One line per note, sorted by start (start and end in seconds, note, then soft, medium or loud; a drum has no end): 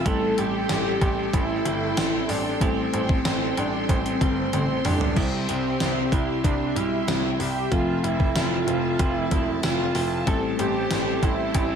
0.00 0.69 C4 medium
0.00 5.13 A4 medium
0.05 0.29 A1 loud
0.05 2.57 G3 medium
0.05 0.37 G3 medium
0.05 2.57 A3 medium
0.05 2.57 C4 medium
0.05 2.62 E4 medium
0.05 2.58 E4 medium
0.05 0.41 A4 loud
0.05 2.58 A4 medium
0.05 5.12 G5 medium
0.05 7.68 C6 medium
0.05 kick loud
0.05 closed hi-hat medium
0.38 0.61 A1 medium
0.38 1.01 G3 medium
0.38 1.33 G4 loud
0.38 closed hi-hat medium
0.69 0.93 A1 loud
0.69 1.33 C4 medium
0.69 snare loud
0.69 closed hi-hat loud
0.69 tambourine medium
1.01 1.25 A1 loud
1.01 1.65 G3 medium
1.01 kick medium
1.01 closed hi-hat medium
1.33 1.57 A1 loud
1.33 1.98 C4 medium
1.33 2.31 E4 loud
1.33 kick loud
1.33 closed hi-hat loud
1.65 1.88 G1 loud
1.65 2.29 G3 medium
1.65 closed hi-hat medium
1.97 2.20 A1 medium
1.97 3.25 C4 medium
1.97 snare loud
1.97 closed hi-hat loud
1.97 tambourine medium
2.29 2.52 A1 medium
2.29 2.61 G3 medium
2.29 2.56 D4 medium
2.29 open hi-hat medium
2.56 2.64 D4 medium
2.60 2.84 A1 loud
2.60 5.12 G3 medium
2.60 2.93 G3 medium
2.60 5.12 A3 medium
2.60 5.13 C4 medium
2.60 2.94 C4 loud
2.60 5.13 E4 medium
2.60 5.17 E4 medium
2.60 5.13 A4 medium
2.60 kick loud
2.60 closed hi-hat medium
2.93 3.16 A1 loud
2.93 3.56 G3 medium
2.93 3.60 C4 loud
2.93 closed hi-hat medium
3.09 kick loud
3.25 3.48 A1 loud
3.25 3.89 C4 medium
3.25 snare loud
3.25 closed hi-hat loud
3.25 tambourine medium
3.57 3.80 A1 loud
3.57 4.20 G3 medium
3.57 3.82 D4 medium
3.57 closed hi-hat medium
3.82 3.91 D4 medium
3.89 4.12 A1 loud
3.89 4.52 C4 medium
3.89 4.53 C4 loud
3.89 kick loud
3.89 closed hi-hat loud
4.06 closed hi-hat medium
4.21 4.44 G1 loud
4.21 4.84 G3 medium
4.21 kick medium
4.21 closed hi-hat medium
4.53 4.76 A1 loud
4.53 5.80 C4 medium
4.53 4.87 C4 medium
4.53 closed hi-hat loud
4.53 high tom medium
4.85 5.08 A1 loud
4.85 5.16 G3 medium
4.85 5.18 D4 medium
4.85 mid tom medium
4.85 open hi-hat medium
5.01 floor tom loud
5.15 5.40 C2 loud
5.15 7.03 G3 medium
5.15 5.47 G3 medium
5.15 7.04 C4 medium
5.15 5.48 C4 loud
5.15 7.05 E4 medium
5.15 8.36 E4 medium
5.15 7.69 G4 medium
5.15 10.23 E5 medium
5.15 kick loud
5.15 crash medium
5.48 5.72 C2 loud
5.48 6.11 G3 medium
5.48 6.14 C4 loud
5.48 closed hi-hat medium
5.80 6.04 C2 loud
5.80 6.44 C4 medium
5.80 snare loud
5.80 closed hi-hat medium
5.80 tambourine medium
6.12 6.35 C2 loud
6.12 6.75 G3 medium
6.12 6.46 E4 medium
6.12 kick medium
6.12 closed hi-hat medium
6.44 6.67 C2 loud
6.44 7.08 C4 medium
6.44 6.78 D4 medium
6.44 kick loud
6.44 closed hi-hat loud
6.76 6.99 B1 medium
6.76 7.39 G3 medium
6.76 7.42 E4 loud
6.76 closed hi-hat medium
7.08 7.31 C2 loud
7.08 7.72 G3 medium
7.08 7.71 C4 medium
7.08 7.71 C4 soft
7.08 7.72 E4 medium
7.08 snare loud
7.08 closed hi-hat loud
7.08 tambourine medium
7.39 7.63 C2 medium
7.39 7.78 G3 medium
7.39 7.71 G4 medium
7.39 open hi-hat medium
7.71 7.95 F1 loud
7.71 10.23 F3 medium
7.71 10.25 F3 medium
7.71 10.23 A3 medium
7.71 8.04 C4 medium
7.71 10.23 C4 medium
7.71 8.06 F4 loud
7.71 10.27 A4 medium
7.71 10.24 A4 medium
7.71 10.24 E5 medium
7.71 11.76 A5 medium
7.71 kick loud
7.71 closed hi-hat medium
8.04 8.27 F1 loud
8.04 8.67 C4 medium
8.04 8.36 E4 medium
8.04 closed hi-hat medium
8.20 kick loud
8.36 8.59 F1 loud
8.36 8.99 E4 medium
8.36 9.17 F4 loud
8.36 snare loud
8.36 closed hi-hat loud
8.36 tambourine medium
8.67 8.90 F1 loud
8.67 9.31 C4 medium
8.67 closed hi-hat medium
8.99 9.23 F1 loud
8.99 9.63 E4 medium
8.99 kick loud
8.99 closed hi-hat loud
9.17 9.60 E4 loud
9.31 9.55 E1 medium
9.31 9.95 C4 medium
9.31 kick medium
9.31 closed hi-hat medium
9.63 9.86 F1 loud
9.63 10.91 E4 medium
9.63 10.24 F4 loud
9.63 snare loud
9.63 closed hi-hat medium
9.63 tambourine medium
9.95 10.18 F1 loud
9.95 10.59 C4 medium
9.95 open hi-hat medium
10.26 10.50 A1 loud
10.26 11.76 G3 medium
10.26 11.76 A3 medium
10.26 11.76 C4 medium
10.26 11.76 E4 medium
10.26 11.76 G4 medium
10.26 11.76 A4 medium
10.26 10.42 A4 loud
10.26 11.76 A4 medium
10.26 11.76 C5 medium
10.26 kick loud
10.26 closed hi-hat medium
10.59 10.82 A1 loud
10.59 11.23 C4 medium
10.59 11.25 G4 loud
10.59 closed hi-hat medium
10.91 11.14 A1 loud
10.91 11.54 E4 medium
10.91 snare loud
10.91 closed hi-hat loud
10.91 tambourine medium
11.23 11.46 A1 loud
11.23 11.76 C4 medium
11.23 11.76 E4 loud
11.23 kick medium
11.23 closed hi-hat medium
11.54 11.76 A1 loud
11.54 11.70 D4 medium
11.54 kick loud
11.54 closed hi-hat loud
11.70 11.76 E4 medium